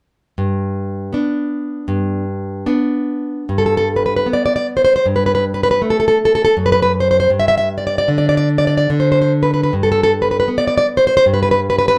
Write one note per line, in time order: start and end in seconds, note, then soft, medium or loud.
0.38 1.11 G2 soft
1.13 2.23 B3 soft
1.13 2.23 D4 soft
1.88 2.64 G2 medium
2.66 3.44 B3 soft
2.66 3.44 D4 medium
3.49 4.26 G2 soft
3.58 3.65 A4 medium
3.66 3.76 A4 medium
3.77 3.88 A4 medium
3.96 4.05 B4 soft
4.06 4.15 B4 soft
4.16 4.27 B4 medium
4.26 5.01 B3 soft
4.33 4.44 D5 medium
4.46 4.55 D5 medium
4.56 4.66 D5 medium
4.77 4.83 C5 medium
4.85 4.95 C5 medium
4.96 5.06 C5 medium
5.06 5.78 G2 soft
5.16 5.25 B4 medium
5.26 5.34 B4 medium
5.35 5.44 B4 medium
5.54 5.62 B4 medium
5.63 5.70 B4 medium
5.71 5.80 B4 medium
5.82 6.50 A3 soft
5.90 5.99 A4 medium
6.00 6.07 A4 medium
6.08 6.17 A4 medium
6.25 6.34 A4 medium
6.35 6.43 A4 medium
6.45 6.54 A4 medium
6.57 7.28 F#2 medium
6.66 6.71 B4 medium
6.72 6.81 B4 medium
6.82 6.91 B4 medium
7.00 7.10 C5 medium
7.11 7.19 C5 medium
7.20 7.29 C5 medium
7.30 8.07 G2 medium
7.40 7.47 E5 medium
7.48 7.56 E5 medium
7.58 7.68 E5 medium
7.78 7.86 D5 soft
7.87 7.97 D5 medium
7.98 8.08 D5 medium
8.08 8.87 D3 soft
8.18 8.28 D5 medium
8.29 8.36 D5 medium
8.37 8.48 D5 medium
8.58 8.66 D5 medium
8.67 8.76 D5 medium
8.77 8.89 D5 medium
8.90 9.70 D3 soft
9.00 9.11 C5 medium
9.12 9.20 C5 medium
9.22 9.32 C5 medium
9.43 9.52 B4 soft
9.54 9.62 B4 medium
9.63 9.73 B4 medium
9.73 10.46 G2 soft
9.83 9.90 A4 medium
9.92 10.01 A4 medium
10.03 10.12 A4 medium
10.22 10.30 B4 soft
10.31 10.38 B4 medium
10.40 10.48 B4 medium
10.48 11.19 B3 soft
10.58 10.66 D5 medium
10.67 10.76 D5 medium
10.78 10.86 D5 medium
10.97 11.05 C5 medium
11.07 11.15 C5 medium
11.17 11.24 C5 medium
11.26 11.95 G2 medium
11.34 11.41 B4 medium
11.43 11.50 B4 medium
11.51 11.60 B4 medium
11.70 11.77 B4 medium
11.79 11.87 B4 medium
11.88 11.96 B4 medium